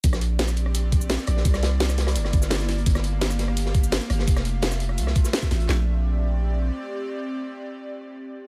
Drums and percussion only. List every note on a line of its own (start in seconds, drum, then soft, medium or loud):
0.04 kick loud
0.04 closed hi-hat medium
0.04 shaker soft
0.13 cross-stick medium
0.13 snare soft
0.13 shaker soft
0.21 closed hi-hat medium
0.39 snare loud
0.39 closed hi-hat loud
0.39 closed hi-hat medium
0.39 shaker soft
0.48 cross-stick soft
0.48 closed hi-hat soft
0.48 shaker medium
0.57 closed hi-hat medium
0.66 cross-stick soft
0.75 closed hi-hat medium
0.75 shaker soft
0.92 kick loud
0.92 closed hi-hat medium
0.92 shaker soft
1.01 shaker medium
1.10 snare loud
1.10 closed hi-hat medium
1.10 closed hi-hat loud
1.10 shaker soft
1.19 snare soft
1.19 shaker soft
1.27 cross-stick medium
1.27 closed hi-hat medium
1.37 snare medium
1.45 kick loud
1.45 closed hi-hat medium
1.45 shaker soft
1.54 cross-stick medium
1.54 snare medium
1.54 shaker soft
1.63 snare loud
1.63 closed hi-hat medium
1.80 snare loud
1.80 closed hi-hat medium
1.80 shaker soft
1.89 cross-stick soft
1.89 snare soft
1.89 shaker medium
1.98 snare loud
1.98 closed hi-hat medium
2.07 cross-stick soft
2.07 snare loud
2.07 closed hi-hat medium
2.16 closed hi-hat medium
2.16 shaker soft
2.25 cross-stick soft
2.25 snare medium
2.33 kick loud
2.33 closed hi-hat medium
2.33 shaker soft
2.42 snare soft
2.42 shaker medium
2.50 snare loud
2.50 closed hi-hat medium
2.50 shaker soft
2.60 snare medium
2.60 shaker soft
2.69 snare soft
2.69 closed hi-hat medium
2.78 closed hi-hat soft
2.86 kick loud
2.86 closed hi-hat medium
2.86 shaker soft
2.95 cross-stick medium
2.95 snare soft
2.95 shaker soft
3.04 closed hi-hat medium
3.21 snare loud
3.21 closed hi-hat medium
3.21 shaker soft
3.30 cross-stick soft
3.30 closed hi-hat soft
3.30 shaker medium
3.39 snare medium
3.39 closed hi-hat medium
3.48 cross-stick soft
3.57 closed hi-hat medium
3.57 shaker soft
3.66 snare soft
3.74 kick loud
3.74 closed hi-hat medium
3.74 shaker soft
3.83 shaker medium
3.92 snare loud
3.92 closed hi-hat medium
3.92 closed hi-hat loud
3.92 shaker soft
4.01 snare soft
4.01 shaker soft
4.10 cross-stick medium
4.10 closed hi-hat medium
4.10 open hi-hat medium
4.19 snare medium
4.28 kick loud
4.28 closed hi-hat medium
4.28 shaker soft
4.36 cross-stick medium
4.36 snare medium
4.36 shaker soft
4.45 closed hi-hat medium
4.62 snare loud
4.62 closed hi-hat medium
4.62 shaker soft
4.71 cross-stick soft
4.71 snare soft
4.71 shaker medium
4.80 closed hi-hat medium
4.89 cross-stick soft
4.98 closed hi-hat medium
4.98 shaker soft
5.07 cross-stick soft
5.07 snare medium
5.15 kick loud
5.15 closed hi-hat medium
5.15 shaker soft
5.24 snare soft
5.24 shaker medium
5.33 snare loud
5.33 closed hi-hat medium
5.33 shaker soft
5.42 kick medium
5.42 snare soft
5.42 shaker soft
5.51 snare soft
5.51 closed hi-hat medium
5.51 open hi-hat medium
5.60 closed hi-hat soft
5.69 snare loud
5.69 clap medium